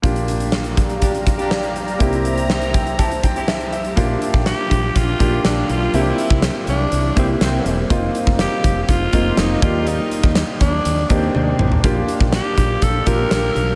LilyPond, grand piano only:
\new Staff \with { instrumentName = "Grand piano" } { \time 4/4 \key bes \major \tempo 4 = 122 << { r1 | r4. g''8 a''8 g''8 e''8 e''8 | r1 | r1 |
r1 | r1 | r1 | } \\ { <bes d' f' g'>1 | <bes c' e' g'>1 | <bes d' f' g'>4. r4 <bes d' f' g'>4 r8 | <bes c' e' g'>4. r4 <bes c' e' g'>4 r8 |
<bes c' ees' f'>4. r4 <bes c' ees' f'>4 <bes ees' g' d''>8~ | <bes ees' g' d''>4 r4. <bes d' ees' g'>4 r8 | <bes d' f' g'>4. r4 <bes d' f' g'>4 r8 | } >> }